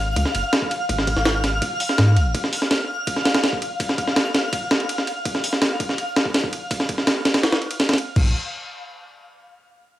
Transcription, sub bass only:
Already playing: G#1
0.17 C#2
0.35 F#1
0.89 G#1
1.16 G#1
1.98 G#2
2.16 B1
2.26 G#1
8.16 A#1

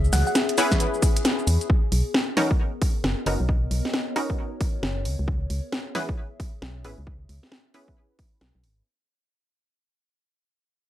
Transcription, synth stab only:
0.58 B3 C#4 E4 G#4 B4
2.37 B3 C#4 D#4 F#4 A#4
3.27 B3 C#4 D#4 F#4 A#4
4.16 B3 C#4 D#4 F#4 A#4
5.95 B3 C#4 E4 G#4 B4
6.85 B3 C#4 E4 G#4 B4
7.74 B3 C#4 E4 G#4 B4

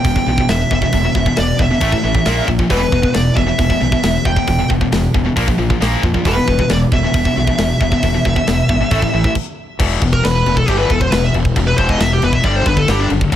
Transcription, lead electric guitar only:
Already playing: G5
0.49 E5
0.73 E5
1.39 D5
1.62 E5
2.71 B4
3.14 D5
3.36 E5
4.25 G5
6.28 B4
6.71 D5
6.94 E5
10.13 A#4
10.24 B4
10.57 A4
10.68 G4
10.78 B4
10.91 A4
11.01 C5
11.12 B4
11.24 E5
11.67 B4
11.77 C5
11.90 D#5
12.01 E5
12.13 G4
12.24 B4
12.33 E5
12.44 D5
12.56 C5
12.67 B4
12.78 A4
12.90 G4
13.00 D4

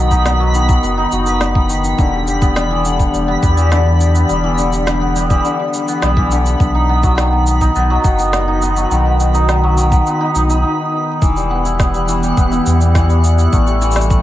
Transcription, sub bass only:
Already playing: B1
0.83 F#1
1.12 F#1
1.99 E1
3.14 E1
3.43 E2
4.29 E1
6.03 B1
6.60 B1
7.75 B1
8.04 F#1
8.91 B1
10.35 B1
11.22 E1
12.37 E1
12.66 E2
13.53 A1

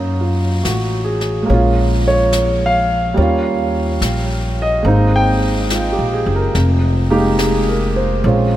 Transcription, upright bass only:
Already playing: F#2
0.65 A1
1.50 A#1
3.17 D#2
4.01 A#1
4.85 G#1
5.99 A#1
6.26 F#1
6.55 F1
8.24 A#1

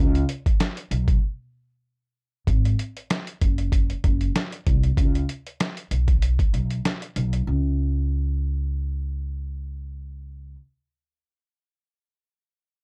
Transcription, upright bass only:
Already playing: C#2
0.91 B1
2.47 G#1
3.42 F#1
4.04 F#1
4.67 C2
4.97 C#2
5.91 B1
6.53 B1
7.16 B1
7.47 C#2

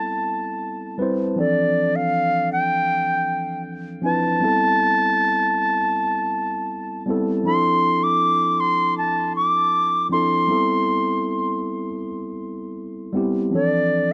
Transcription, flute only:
Already playing: A5
1.38 D5
1.96 F5
2.53 G5
4.04 A5
7.46 C6
8.04 D6
8.60 C6
8.98 A5
9.36 D6
10.12 C6
13.55 D5

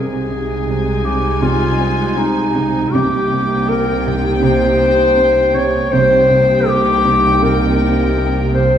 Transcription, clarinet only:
Already playing: G#4
1.05 G4
1.42 F4
2.18 D#4
2.92 G4
3.69 A#4
4.44 C5
5.54 C#5
5.92 C5
6.68 G4
7.43 A#4
8.54 C5

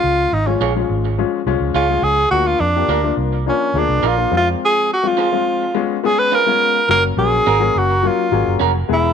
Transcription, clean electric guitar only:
0.61 F4 G#4 C#5
1.74 F4 G#4 C#5
2.89 F4 A#4 D5
4.03 F4 A#4 D5
5.17 F4 G#4 C5
6.32 C#4 F4 B4
7.46 C#4 F#4 A#4
8.60 C#4 F#4 A#4

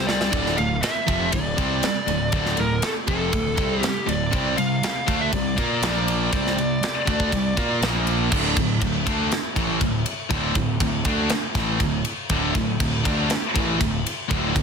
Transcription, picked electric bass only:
Already playing: C2
0.33 D1
0.58 D1
1.08 F1
1.33 D1
1.59 C2
1.83 muted picked electric bass stroke
2.08 D1
2.33 D1
2.58 D1
3.08 F1
3.33 D1
3.58 C2
3.83 muted picked electric bass stroke
4.08 D1
4.34 C2
4.57 C2
5.08 D2
5.33 C2
5.58 A#2
5.82 A#1
6.33 C2
6.57 C2
7.08 D2
7.33 C2
7.58 A#2
7.81 A#1
8.32 D1
8.57 D1
8.82 D1
9.07 D2
9.56 A1
9.81 D1
10.30 D1
10.55 D1
10.81 D1
11.06 D2
11.55 A1
11.80 D1
12.30 D1
12.55 D1
12.81 D1
13.06 D2
13.56 A1
13.81 D1
14.31 D1
14.56 D1

